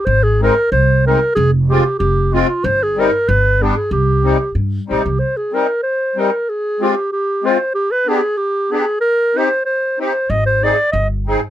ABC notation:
X:1
M:2/4
L:1/16
Q:"Swing" 1/4=94
K:Cm
V:1 name="Clarinet"
c A B2 c2 B2 | A2 G2 G2 F2 | c A B2 =B2 G A | G4 z2 G2 |
c A B2 c2 B2 | A2 G2 G2 c2 | G =B A2 G2 A2 | B2 c2 c2 c2 |
e c d2 e2 z2 |]
V:2 name="Accordion"
z2 [A,CE]2 z2 [A,CE]2 | z2 [A,CF]2 z2 [A,CF]2 | z2 [G,CE]2 z2 [G,=B,D]2 | z2 [G,CE]2 z2 [G,CE]2 |
z2 [G,CE]2 z2 [G,CE]2 | z2 [A,CF]2 z2 [A,CF]2 | z2 [=B,DG]2 z2 [B,DG]2 | z2 [CEG]2 z2 [CEG]2 |
z2 [CEA]2 z2 [CEA]2 |]
V:3 name="Upright bass" clef=bass
A,,,4 C,,4 | F,,,4 F,,,4 | G,,,4 G,,,4 | C,,4 G,,2 B,,, C,, |
z8 | z8 | z8 | z8 |
A,,,4 G,,,4 |]